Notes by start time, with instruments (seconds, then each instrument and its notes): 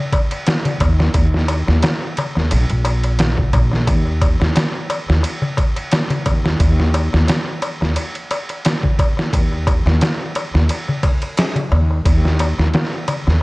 0.12 kick, ride, darbuka tek
0.31 ride, darbuka tek
0.46 snare, ride, darbuka tek
0.65 ride, darbuka tek, darbuka dum
0.80 upright bass D#2, kick, ride, darbuka tek
1.00 snare, darbuka tek
1.14 upright bass D#2, kick, ride, darbuka tek
1.34 snare, darbuka tek
1.48 ride, darbuka tek
1.67 upright bass D#2, snare, darbuka tek
1.83 snare, ride, darbuka tek
2.02 darbuka tek
2.17 ride, darbuka tek, darbuka dum
2.35 upright bass D#2, snare, darbuka tek
2.51 upright bass A#1, ride, darbuka tek
2.70 upright bass A#1, ride, darbuka tek
2.85 ride, darbuka tek
3.04 ride, darbuka tek
3.19 snare, ride, darbuka tek
3.38 kick, darbuka tek, darbuka dum
3.53 upright bass A#1, kick, ride, darbuka tek
3.72 snare, darbuka tek
3.88 upright bass D#2, kick, ride, darbuka tek
4.05 darbuka tek
4.22 kick, ride, darbuka tek
4.40 upright bass D#2, snare, darbuka tek
4.56 snare, ride, darbuka tek
4.74 darbuka tek
4.90 ride, darbuka tek
5.09 upright bass D#2, snare, darbuka tek
5.23 ride, darbuka tek
5.42 darbuka tek, darbuka dum
5.57 kick, ride, darbuka tek
5.76 ride, darbuka tek
5.92 snare, ride, darbuka tek
6.10 ride, darbuka tek, darbuka dum
6.26 upright bass D#2, kick, ride, darbuka tek
6.45 snare, darbuka tek
6.60 upright bass D#2, kick, ride, darbuka tek
6.79 snare, darbuka tek
6.94 ride, darbuka tek
7.13 upright bass D#2, snare, darbuka tek
7.27 snare, ride, darbuka tek
7.48 darbuka tek
7.62 ride, darbuka tek
7.81 upright bass D#2, snare, darbuka tek
7.96 ride, darbuka tek
8.15 ride, darbuka tek
8.31 ride, darbuka tek
8.49 ride, darbuka tek
8.65 snare, ride, darbuka tek
8.83 kick, darbuka tek, darbuka dum
8.99 kick, ride, darbuka tek
9.17 snare, darbuka tek
9.33 upright bass D#2, kick, ride, darbuka tek
9.52 darbuka tek
9.67 kick, ride, darbuka tek
9.86 upright bass D#2, snare, darbuka tek
10.01 snare, ride, darbuka tek
10.20 darbuka tek
10.35 ride, darbuka tek
10.54 upright bass D#2, snare, darbuka tek
10.69 ride, darbuka tek
10.88 darbuka tek, darbuka dum
11.03 kick, ride, darbuka tek
11.22 ride, darbuka tek
11.37 snare, ride, darbuka tek
11.56 ride, darbuka tek, darbuka dum
11.72 upright bass D#2, darbuka tek
11.91 darbuka tek
12.06 upright bass D#2, kick, ride, darbuka tek
12.25 snare, darbuka tek
12.39 ride, darbuka tek
12.58 upright bass D#2, snare, darbuka tek
12.73 snare, ride, darbuka tek
12.93 darbuka tek
13.08 ride, darbuka tek, darbuka dum
13.27 upright bass D#2, snare, darbuka tek